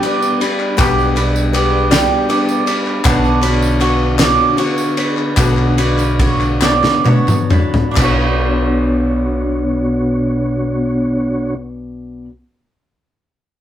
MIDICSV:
0, 0, Header, 1, 6, 480
1, 0, Start_track
1, 0, Key_signature, 2, "minor"
1, 0, Tempo, 753769
1, 501, Time_signature, 6, 3, 24, 8
1, 2421, Tempo, 782269
1, 3381, Tempo, 823045
1, 3861, Tempo, 862069
1, 4341, Tempo, 911854
1, 4821, Tempo, 938967
1, 7707, End_track
2, 0, Start_track
2, 0, Title_t, "Mandolin"
2, 0, Program_c, 0, 25
2, 0, Note_on_c, 0, 71, 83
2, 0, Note_on_c, 0, 79, 105
2, 29, Note_on_c, 0, 74, 80
2, 257, Note_off_c, 0, 71, 0
2, 265, Note_on_c, 0, 71, 86
2, 504, Note_on_c, 0, 67, 99
2, 737, Note_off_c, 0, 71, 0
2, 741, Note_off_c, 0, 79, 0
2, 745, Note_on_c, 0, 71, 79
2, 976, Note_off_c, 0, 74, 0
2, 984, Note_on_c, 0, 74, 74
2, 1221, Note_on_c, 0, 79, 98
2, 1454, Note_off_c, 0, 74, 0
2, 1462, Note_off_c, 0, 67, 0
2, 1462, Note_on_c, 0, 74, 92
2, 1695, Note_off_c, 0, 71, 0
2, 1703, Note_on_c, 0, 71, 77
2, 1940, Note_off_c, 0, 74, 0
2, 1940, Note_off_c, 0, 79, 0
2, 1941, Note_off_c, 0, 71, 0
2, 1942, Note_on_c, 0, 62, 106
2, 2181, Note_on_c, 0, 71, 91
2, 2427, Note_on_c, 0, 73, 82
2, 2660, Note_off_c, 0, 73, 0
2, 2662, Note_on_c, 0, 74, 101
2, 2895, Note_off_c, 0, 74, 0
2, 2897, Note_off_c, 0, 62, 0
2, 2897, Note_on_c, 0, 73, 85
2, 3133, Note_off_c, 0, 71, 0
2, 3141, Note_on_c, 0, 71, 91
2, 3385, Note_on_c, 0, 62, 90
2, 3615, Note_off_c, 0, 71, 0
2, 3622, Note_on_c, 0, 71, 82
2, 3859, Note_off_c, 0, 73, 0
2, 3866, Note_on_c, 0, 73, 86
2, 4100, Note_off_c, 0, 73, 0
2, 4103, Note_on_c, 0, 74, 102
2, 4343, Note_off_c, 0, 62, 0
2, 4345, Note_off_c, 0, 74, 0
2, 4347, Note_on_c, 0, 73, 91
2, 4578, Note_off_c, 0, 71, 0
2, 4585, Note_on_c, 0, 71, 84
2, 4794, Note_on_c, 0, 62, 80
2, 4820, Note_off_c, 0, 71, 0
2, 4824, Note_off_c, 0, 73, 0
2, 4826, Note_on_c, 0, 71, 76
2, 4855, Note_on_c, 0, 73, 90
2, 6996, Note_off_c, 0, 62, 0
2, 7012, Note_off_c, 0, 71, 0
2, 7026, Note_off_c, 0, 73, 0
2, 7707, End_track
3, 0, Start_track
3, 0, Title_t, "Steel-string acoustic guitar"
3, 0, Program_c, 1, 25
3, 16, Note_on_c, 1, 59, 69
3, 20, Note_on_c, 1, 62, 72
3, 23, Note_on_c, 1, 67, 77
3, 29, Note_on_c, 1, 74, 71
3, 249, Note_off_c, 1, 74, 0
3, 257, Note_off_c, 1, 67, 0
3, 257, Note_on_c, 1, 74, 58
3, 258, Note_off_c, 1, 59, 0
3, 260, Note_off_c, 1, 62, 0
3, 265, Note_on_c, 1, 67, 54
3, 272, Note_on_c, 1, 62, 47
3, 488, Note_off_c, 1, 62, 0
3, 489, Note_off_c, 1, 67, 0
3, 489, Note_on_c, 1, 47, 95
3, 492, Note_off_c, 1, 74, 0
3, 493, Note_on_c, 1, 59, 100
3, 495, Note_on_c, 1, 62, 100
3, 496, Note_on_c, 1, 67, 102
3, 499, Note_on_c, 1, 74, 115
3, 728, Note_off_c, 1, 74, 0
3, 735, Note_off_c, 1, 47, 0
3, 735, Note_on_c, 1, 74, 58
3, 736, Note_off_c, 1, 59, 0
3, 737, Note_off_c, 1, 67, 0
3, 738, Note_off_c, 1, 62, 0
3, 744, Note_on_c, 1, 67, 54
3, 748, Note_on_c, 1, 62, 49
3, 972, Note_off_c, 1, 62, 0
3, 976, Note_on_c, 1, 59, 75
3, 978, Note_off_c, 1, 67, 0
3, 978, Note_off_c, 1, 74, 0
3, 980, Note_on_c, 1, 62, 74
3, 986, Note_on_c, 1, 67, 69
3, 989, Note_on_c, 1, 74, 81
3, 1207, Note_off_c, 1, 74, 0
3, 1209, Note_off_c, 1, 67, 0
3, 1211, Note_off_c, 1, 62, 0
3, 1215, Note_on_c, 1, 74, 85
3, 1216, Note_off_c, 1, 59, 0
3, 1216, Note_on_c, 1, 67, 80
3, 1219, Note_on_c, 1, 62, 87
3, 1224, Note_on_c, 1, 59, 72
3, 1226, Note_on_c, 1, 47, 80
3, 1450, Note_off_c, 1, 59, 0
3, 1455, Note_off_c, 1, 62, 0
3, 1457, Note_off_c, 1, 74, 0
3, 1457, Note_on_c, 1, 59, 66
3, 1458, Note_off_c, 1, 67, 0
3, 1463, Note_off_c, 1, 47, 0
3, 1463, Note_on_c, 1, 62, 72
3, 1467, Note_on_c, 1, 67, 78
3, 1468, Note_on_c, 1, 74, 76
3, 1688, Note_off_c, 1, 74, 0
3, 1695, Note_on_c, 1, 74, 56
3, 1696, Note_off_c, 1, 67, 0
3, 1698, Note_off_c, 1, 59, 0
3, 1701, Note_off_c, 1, 62, 0
3, 1703, Note_on_c, 1, 67, 55
3, 1710, Note_on_c, 1, 62, 53
3, 1937, Note_off_c, 1, 74, 0
3, 1938, Note_off_c, 1, 62, 0
3, 1940, Note_on_c, 1, 47, 87
3, 1941, Note_off_c, 1, 67, 0
3, 1945, Note_on_c, 1, 59, 106
3, 1945, Note_on_c, 1, 62, 109
3, 1948, Note_on_c, 1, 66, 106
3, 1951, Note_on_c, 1, 73, 103
3, 2170, Note_off_c, 1, 73, 0
3, 2177, Note_off_c, 1, 66, 0
3, 2177, Note_on_c, 1, 73, 63
3, 2180, Note_off_c, 1, 47, 0
3, 2183, Note_off_c, 1, 59, 0
3, 2183, Note_off_c, 1, 62, 0
3, 2185, Note_on_c, 1, 66, 55
3, 2190, Note_on_c, 1, 62, 51
3, 2416, Note_off_c, 1, 62, 0
3, 2420, Note_off_c, 1, 66, 0
3, 2421, Note_off_c, 1, 73, 0
3, 2421, Note_on_c, 1, 59, 75
3, 2424, Note_on_c, 1, 62, 81
3, 2427, Note_on_c, 1, 66, 80
3, 2435, Note_on_c, 1, 73, 78
3, 2650, Note_off_c, 1, 73, 0
3, 2651, Note_off_c, 1, 66, 0
3, 2656, Note_off_c, 1, 62, 0
3, 2657, Note_off_c, 1, 59, 0
3, 2657, Note_on_c, 1, 73, 98
3, 2659, Note_on_c, 1, 66, 88
3, 2663, Note_on_c, 1, 59, 69
3, 2663, Note_on_c, 1, 62, 88
3, 2667, Note_on_c, 1, 47, 78
3, 2886, Note_off_c, 1, 59, 0
3, 2892, Note_off_c, 1, 62, 0
3, 2894, Note_on_c, 1, 59, 68
3, 2895, Note_off_c, 1, 73, 0
3, 2896, Note_off_c, 1, 66, 0
3, 2900, Note_off_c, 1, 47, 0
3, 2900, Note_on_c, 1, 62, 65
3, 2904, Note_on_c, 1, 66, 79
3, 2908, Note_on_c, 1, 73, 80
3, 3132, Note_off_c, 1, 73, 0
3, 3136, Note_off_c, 1, 59, 0
3, 3137, Note_off_c, 1, 66, 0
3, 3139, Note_off_c, 1, 62, 0
3, 3140, Note_on_c, 1, 73, 61
3, 3145, Note_on_c, 1, 66, 52
3, 3150, Note_on_c, 1, 62, 44
3, 3382, Note_off_c, 1, 62, 0
3, 3383, Note_off_c, 1, 73, 0
3, 3385, Note_on_c, 1, 47, 98
3, 3386, Note_off_c, 1, 66, 0
3, 3386, Note_on_c, 1, 59, 88
3, 3389, Note_on_c, 1, 62, 91
3, 3392, Note_on_c, 1, 66, 103
3, 3392, Note_on_c, 1, 73, 105
3, 3614, Note_off_c, 1, 73, 0
3, 3620, Note_off_c, 1, 66, 0
3, 3621, Note_off_c, 1, 47, 0
3, 3621, Note_on_c, 1, 73, 57
3, 3622, Note_off_c, 1, 59, 0
3, 3623, Note_off_c, 1, 62, 0
3, 3627, Note_on_c, 1, 66, 57
3, 3632, Note_on_c, 1, 62, 50
3, 3859, Note_off_c, 1, 62, 0
3, 3863, Note_off_c, 1, 66, 0
3, 3863, Note_off_c, 1, 73, 0
3, 3863, Note_on_c, 1, 59, 72
3, 3866, Note_on_c, 1, 62, 72
3, 3870, Note_on_c, 1, 66, 82
3, 3874, Note_on_c, 1, 73, 75
3, 4095, Note_off_c, 1, 73, 0
3, 4097, Note_off_c, 1, 66, 0
3, 4099, Note_off_c, 1, 59, 0
3, 4099, Note_off_c, 1, 62, 0
3, 4102, Note_on_c, 1, 73, 79
3, 4104, Note_on_c, 1, 66, 74
3, 4105, Note_on_c, 1, 62, 81
3, 4108, Note_on_c, 1, 59, 77
3, 4109, Note_on_c, 1, 47, 68
3, 4330, Note_off_c, 1, 59, 0
3, 4336, Note_off_c, 1, 62, 0
3, 4336, Note_on_c, 1, 59, 71
3, 4337, Note_off_c, 1, 66, 0
3, 4343, Note_off_c, 1, 73, 0
3, 4343, Note_on_c, 1, 62, 64
3, 4344, Note_on_c, 1, 66, 73
3, 4347, Note_off_c, 1, 47, 0
3, 4349, Note_on_c, 1, 73, 68
3, 4569, Note_off_c, 1, 73, 0
3, 4574, Note_off_c, 1, 66, 0
3, 4575, Note_on_c, 1, 73, 61
3, 4576, Note_off_c, 1, 59, 0
3, 4579, Note_off_c, 1, 62, 0
3, 4580, Note_on_c, 1, 66, 57
3, 4586, Note_on_c, 1, 62, 48
3, 4808, Note_on_c, 1, 47, 82
3, 4821, Note_off_c, 1, 73, 0
3, 4823, Note_off_c, 1, 66, 0
3, 4824, Note_on_c, 1, 59, 94
3, 4826, Note_off_c, 1, 62, 0
3, 4834, Note_on_c, 1, 62, 100
3, 4847, Note_on_c, 1, 66, 95
3, 4856, Note_on_c, 1, 73, 91
3, 7023, Note_off_c, 1, 47, 0
3, 7031, Note_off_c, 1, 59, 0
3, 7036, Note_off_c, 1, 62, 0
3, 7043, Note_off_c, 1, 66, 0
3, 7047, Note_off_c, 1, 73, 0
3, 7707, End_track
4, 0, Start_track
4, 0, Title_t, "Tonewheel organ"
4, 0, Program_c, 2, 16
4, 0, Note_on_c, 2, 55, 62
4, 0, Note_on_c, 2, 59, 63
4, 0, Note_on_c, 2, 62, 80
4, 473, Note_off_c, 2, 62, 0
4, 500, Note_on_c, 2, 62, 77
4, 1914, Note_off_c, 2, 55, 0
4, 1943, Note_on_c, 2, 50, 72
4, 3358, Note_off_c, 2, 59, 0
4, 3387, Note_on_c, 2, 57, 65
4, 4801, Note_off_c, 2, 62, 0
4, 4803, Note_off_c, 2, 50, 0
4, 4811, Note_off_c, 2, 57, 0
4, 4822, Note_on_c, 2, 62, 64
4, 4823, Note_on_c, 2, 73, 77
4, 4824, Note_on_c, 2, 66, 60
4, 4825, Note_on_c, 2, 47, 69
4, 4825, Note_on_c, 2, 59, 64
4, 6652, Note_off_c, 2, 62, 0
4, 6652, Note_off_c, 2, 73, 0
4, 6653, Note_off_c, 2, 47, 0
4, 6653, Note_off_c, 2, 59, 0
4, 6653, Note_off_c, 2, 66, 0
4, 7707, End_track
5, 0, Start_track
5, 0, Title_t, "Upright bass"
5, 0, Program_c, 3, 32
5, 502, Note_on_c, 3, 35, 104
5, 1308, Note_off_c, 3, 35, 0
5, 1942, Note_on_c, 3, 35, 110
5, 2748, Note_off_c, 3, 35, 0
5, 3383, Note_on_c, 3, 35, 104
5, 4194, Note_off_c, 3, 35, 0
5, 4824, Note_on_c, 3, 35, 94
5, 7010, Note_off_c, 3, 35, 0
5, 7707, End_track
6, 0, Start_track
6, 0, Title_t, "Drums"
6, 19, Note_on_c, 9, 51, 58
6, 82, Note_off_c, 9, 51, 0
6, 143, Note_on_c, 9, 54, 83
6, 206, Note_off_c, 9, 54, 0
6, 262, Note_on_c, 9, 51, 68
6, 326, Note_off_c, 9, 51, 0
6, 379, Note_on_c, 9, 39, 32
6, 443, Note_off_c, 9, 39, 0
6, 500, Note_on_c, 9, 39, 114
6, 501, Note_on_c, 9, 51, 90
6, 501, Note_on_c, 9, 54, 98
6, 502, Note_on_c, 9, 36, 119
6, 563, Note_off_c, 9, 39, 0
6, 565, Note_off_c, 9, 51, 0
6, 565, Note_off_c, 9, 54, 0
6, 566, Note_off_c, 9, 36, 0
6, 627, Note_on_c, 9, 54, 34
6, 690, Note_off_c, 9, 54, 0
6, 741, Note_on_c, 9, 39, 34
6, 743, Note_on_c, 9, 51, 62
6, 805, Note_off_c, 9, 39, 0
6, 807, Note_off_c, 9, 51, 0
6, 864, Note_on_c, 9, 54, 83
6, 928, Note_off_c, 9, 54, 0
6, 981, Note_on_c, 9, 39, 34
6, 983, Note_on_c, 9, 51, 72
6, 1045, Note_off_c, 9, 39, 0
6, 1047, Note_off_c, 9, 51, 0
6, 1221, Note_on_c, 9, 39, 97
6, 1224, Note_on_c, 9, 38, 119
6, 1224, Note_on_c, 9, 51, 84
6, 1225, Note_on_c, 9, 54, 119
6, 1285, Note_off_c, 9, 39, 0
6, 1287, Note_off_c, 9, 38, 0
6, 1287, Note_off_c, 9, 51, 0
6, 1289, Note_off_c, 9, 54, 0
6, 1463, Note_on_c, 9, 51, 66
6, 1526, Note_off_c, 9, 51, 0
6, 1583, Note_on_c, 9, 54, 87
6, 1647, Note_off_c, 9, 54, 0
6, 1701, Note_on_c, 9, 51, 66
6, 1764, Note_off_c, 9, 51, 0
6, 1826, Note_on_c, 9, 39, 39
6, 1889, Note_off_c, 9, 39, 0
6, 1938, Note_on_c, 9, 39, 117
6, 1942, Note_on_c, 9, 54, 111
6, 1943, Note_on_c, 9, 36, 125
6, 1943, Note_on_c, 9, 51, 95
6, 2002, Note_off_c, 9, 39, 0
6, 2006, Note_off_c, 9, 54, 0
6, 2007, Note_off_c, 9, 36, 0
6, 2007, Note_off_c, 9, 51, 0
6, 2064, Note_on_c, 9, 54, 39
6, 2128, Note_off_c, 9, 54, 0
6, 2179, Note_on_c, 9, 39, 37
6, 2182, Note_on_c, 9, 51, 75
6, 2243, Note_off_c, 9, 39, 0
6, 2246, Note_off_c, 9, 51, 0
6, 2307, Note_on_c, 9, 54, 91
6, 2371, Note_off_c, 9, 54, 0
6, 2423, Note_on_c, 9, 39, 36
6, 2426, Note_on_c, 9, 51, 71
6, 2484, Note_off_c, 9, 39, 0
6, 2487, Note_off_c, 9, 51, 0
6, 2657, Note_on_c, 9, 39, 107
6, 2661, Note_on_c, 9, 38, 127
6, 2661, Note_on_c, 9, 51, 98
6, 2663, Note_on_c, 9, 54, 113
6, 2718, Note_off_c, 9, 39, 0
6, 2723, Note_off_c, 9, 38, 0
6, 2723, Note_off_c, 9, 51, 0
6, 2724, Note_off_c, 9, 54, 0
6, 2899, Note_on_c, 9, 51, 69
6, 2960, Note_off_c, 9, 51, 0
6, 3020, Note_on_c, 9, 54, 83
6, 3081, Note_off_c, 9, 54, 0
6, 3139, Note_on_c, 9, 51, 66
6, 3200, Note_off_c, 9, 51, 0
6, 3260, Note_on_c, 9, 39, 34
6, 3321, Note_off_c, 9, 39, 0
6, 3381, Note_on_c, 9, 39, 102
6, 3384, Note_on_c, 9, 36, 112
6, 3385, Note_on_c, 9, 51, 89
6, 3385, Note_on_c, 9, 54, 103
6, 3440, Note_off_c, 9, 39, 0
6, 3443, Note_off_c, 9, 36, 0
6, 3443, Note_off_c, 9, 51, 0
6, 3443, Note_off_c, 9, 54, 0
6, 3499, Note_on_c, 9, 39, 32
6, 3557, Note_off_c, 9, 39, 0
6, 3622, Note_on_c, 9, 51, 70
6, 3681, Note_off_c, 9, 51, 0
6, 3739, Note_on_c, 9, 39, 34
6, 3744, Note_on_c, 9, 54, 77
6, 3797, Note_off_c, 9, 39, 0
6, 3802, Note_off_c, 9, 54, 0
6, 3864, Note_on_c, 9, 36, 88
6, 3864, Note_on_c, 9, 51, 75
6, 3920, Note_off_c, 9, 36, 0
6, 3920, Note_off_c, 9, 51, 0
6, 3981, Note_on_c, 9, 39, 33
6, 3986, Note_on_c, 9, 54, 32
6, 4037, Note_off_c, 9, 39, 0
6, 4042, Note_off_c, 9, 54, 0
6, 4096, Note_on_c, 9, 39, 110
6, 4102, Note_on_c, 9, 38, 68
6, 4102, Note_on_c, 9, 54, 106
6, 4152, Note_off_c, 9, 39, 0
6, 4157, Note_off_c, 9, 54, 0
6, 4158, Note_off_c, 9, 38, 0
6, 4219, Note_on_c, 9, 39, 33
6, 4222, Note_on_c, 9, 38, 71
6, 4274, Note_off_c, 9, 39, 0
6, 4277, Note_off_c, 9, 38, 0
6, 4341, Note_on_c, 9, 39, 33
6, 4343, Note_on_c, 9, 48, 86
6, 4394, Note_off_c, 9, 39, 0
6, 4396, Note_off_c, 9, 48, 0
6, 4460, Note_on_c, 9, 39, 30
6, 4461, Note_on_c, 9, 47, 77
6, 4462, Note_on_c, 9, 54, 88
6, 4512, Note_off_c, 9, 39, 0
6, 4513, Note_off_c, 9, 47, 0
6, 4515, Note_off_c, 9, 54, 0
6, 4580, Note_on_c, 9, 45, 98
6, 4582, Note_on_c, 9, 54, 32
6, 4632, Note_off_c, 9, 45, 0
6, 4635, Note_off_c, 9, 54, 0
6, 4702, Note_on_c, 9, 43, 93
6, 4755, Note_off_c, 9, 43, 0
6, 4820, Note_on_c, 9, 39, 89
6, 4824, Note_on_c, 9, 36, 105
6, 4824, Note_on_c, 9, 49, 88
6, 4825, Note_on_c, 9, 54, 75
6, 4871, Note_off_c, 9, 39, 0
6, 4875, Note_off_c, 9, 36, 0
6, 4875, Note_off_c, 9, 49, 0
6, 4876, Note_off_c, 9, 54, 0
6, 7707, End_track
0, 0, End_of_file